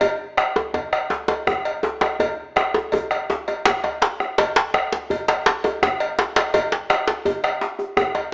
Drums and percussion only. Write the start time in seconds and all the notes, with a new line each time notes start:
0.01 bombo rim, bombo low, cowbell, djembe bass
0.37 bombo rim, cowbell, djembe slap
0.56 djembe tone
0.74 bombo low, cowbell, djembe tone
0.93 bombo rim, cowbell
1.10 djembe slap, djembe tone
1.28 bombo rim, cowbell, djembe tone
1.47 bombo rim, bombo low, djembe tone, djembe bass
1.65 cowbell
1.83 djembe slap, djembe tone
2.01 bombo rim, cowbell, djembe tone
2.19 bombo low, cowbell, djembe slap, djembe tone, djembe bass
2.56 bombo rim, cowbell, djembe slap, djembe tone
2.74 djembe tone
2.92 bombo low, cowbell, djembe tone, djembe bass
3.11 bombo rim, cowbell
3.30 djembe slap, djembe tone
3.48 bombo rim, cowbell, djembe slap, djembe tone
3.65 bombo rim, bombo low, djembe slap, djembe bass
3.84 cowbell, djembe tone
4.02 djembe slap
4.20 bombo rim, djembe slap, djembe tone
4.38 bombo low, cowbell, djembe slap, djembe bass
4.56 djembe slap
4.74 bombo rim, cowbell, djembe tone
4.92 djembe slap, djembe tone
5.10 bombo low, cowbell, djembe bass
5.28 bombo rim, cowbell, djembe slap
5.46 djembe slap
5.64 bombo rim, cowbell, djembe tone
5.82 bombo rim, bombo low, djembe slap, djembe bass
6.00 cowbell
6.19 djembe slap
6.36 bombo rim, cowbell, djembe slap, djembe tone
6.54 bombo rim, bombo low, cowbell, djembe tone, djembe bass
6.72 djembe slap
6.90 bombo rim, cowbell, djembe slap
7.08 djembe slap, djembe tone
7.25 bombo low, cowbell, djembe bass
7.44 bombo rim, cowbell
7.61 djembe slap
7.79 bombo rim, djembe tone
7.97 bombo rim, bombo low, djembe tone, djembe bass
8.15 cowbell, djembe tone